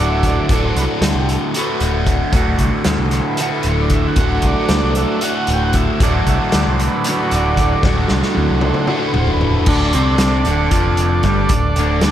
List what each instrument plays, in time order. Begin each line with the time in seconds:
Already playing: overdriven electric guitar D2 A2 D3 A3 F#4, transistor combo organ F#3 A3 D4
0.00 picked electric bass D1
0.11 transistor combo organ E5
0.23 transistor combo organ D5, kick, closed hi-hat
0.49 picked electric bass D1, overdriven electric guitar D2 A2, transistor combo organ F#3 A3 D4, kick, closed hi-hat
0.53 overdriven electric guitar D3 A3 F#4
0.66 transistor combo organ C5
0.76 picked electric bass C2, transistor combo organ B4, closed hi-hat
0.93 transistor combo organ A4
1.01 picked electric bass D2, snare, closed hi-hat
1.15 picked electric bass C2, transistor combo organ G4
1.29 closed hi-hat
1.33 transistor combo organ A4
1.47 transistor combo organ A4
1.54 overdriven electric guitar A2 D3 A3 F#4, transistor combo organ B4, closed hi-hat
1.59 overdriven electric guitar D2
1.80 picked electric bass D1, closed hi-hat
2.07 kick, closed hi-hat
2.33 picked electric bass D1, overdriven electric guitar D2 A2 D3 A3 F#4, kick, closed hi-hat
2.37 transistor combo organ F#3 A3 D4
2.59 picked electric bass C2, kick, closed hi-hat
2.84 picked electric bass D2, snare, closed hi-hat
2.99 picked electric bass C2
3.11 transistor combo organ C5, snare, closed hi-hat
3.29 transistor combo organ B4
3.37 overdriven electric guitar D2, transistor combo organ A4, closed hi-hat
3.41 overdriven electric guitar A2 D3 A3 F#4
3.56 transistor combo organ B4
3.63 picked electric bass D1, closed hi-hat
3.69 transistor combo organ C5
3.82 transistor combo organ D5
3.90 kick, closed hi-hat
3.95 transistor combo organ E5
4.07 transistor combo organ F#5
4.16 picked electric bass D1, overdriven electric guitar D2 A2 D3 A3 F#4, kick, closed hi-hat
4.20 transistor combo organ F#3 A3 D4
4.42 picked electric bass C2, kick, closed hi-hat
4.48 transistor combo organ D5
4.69 picked electric bass D2, snare, closed hi-hat
4.83 picked electric bass C2
4.95 transistor combo organ F#3 A3 D4 E5, closed hi-hat
5.21 overdriven electric guitar D2 A2 D3 A3 F#4, transistor combo organ F#5, closed hi-hat
5.47 picked electric bass D1, closed hi-hat
5.53 transistor combo organ G5
5.63 transistor combo organ F#5
5.73 transistor combo organ E5, kick, closed hi-hat
6.00 picked electric bass D1, overdriven electric guitar D2 A2 D3 A3, transistor combo organ F#3 A3 D4 D5, kick, closed hi-hat
6.05 overdriven electric guitar F#4
6.14 transistor combo organ C5
6.27 picked electric bass C2, transistor combo organ E5, kick, closed hi-hat
6.52 picked electric bass D2, transistor combo organ D5, snare, closed hi-hat
6.67 picked electric bass C2, transistor combo organ C5
6.79 closed hi-hat
6.87 transistor combo organ B4
7.04 overdriven electric guitar D2 A2, closed hi-hat
7.08 overdriven electric guitar D3 A3 F#4
7.31 picked electric bass D1, closed hi-hat
7.36 transistor combo organ D5
7.57 kick, snare, closed hi-hat
7.83 picked electric bass D1, overdriven electric guitar D2 A2 D3 A3, transistor combo organ F#3 A3, kick, snare
7.87 transistor combo organ D4, overdriven electric guitar F#4
8.08 picked electric bass C2, snare
8.22 snare
8.35 picked electric bass D2, high tom
8.50 picked electric bass C2
8.61 transistor combo organ F#3 A3 D4 C5, mid tom
8.74 mid tom
8.87 overdriven electric guitar D2 A2 D3 A3 F#4, mid tom
9.08 transistor combo organ B4
9.14 picked electric bass D1, mid tom
9.19 transistor combo organ C5
9.27 floor tom
9.33 transistor combo organ B4
9.41 floor tom
9.66 picked electric bass D1, overdriven electric guitar D2 D3, transistor combo organ D3 A3 D4 A4 D5, kick, crash
9.93 picked electric bass C2, overdriven electric guitar C3 C4, closed hi-hat
10.18 snare, closed hi-hat
10.45 picked electric bass D1, overdriven electric guitar D2 D3, closed hi-hat
10.71 picked electric bass F1, overdriven electric guitar F2 F3, kick, closed hi-hat
10.97 closed hi-hat
11.23 picked electric bass G1, overdriven electric guitar G2 G3, kick, snare, closed hi-hat
11.49 picked electric bass D1, overdriven electric guitar D2, kick, closed hi-hat
11.76 picked electric bass D1, overdriven electric guitar D2 D3, closed hi-hat
12.01 picked electric bass D2, overdriven electric guitar D3 D4, snare, closed hi-hat